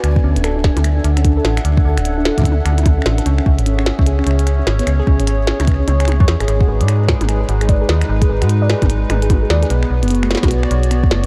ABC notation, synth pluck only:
X:1
M:4/4
L:1/16
Q:"Swing 16ths" 1/4=149
K:Dlyd
V:1 name="Synth pluck"
D D C D A D D z2 D D C D A D z | z2 D D C D A D D z2 D D C D A | C C z2 C C B, C G C C z2 C z B, | C G C C z2 C C B, C c G G c z G |
G F G d G G z2 G G F G d G z2 | z G G F G d G z3 G G F G d G | B, z2 B, B, A, B, F B, B, z2 B, B, A, z |]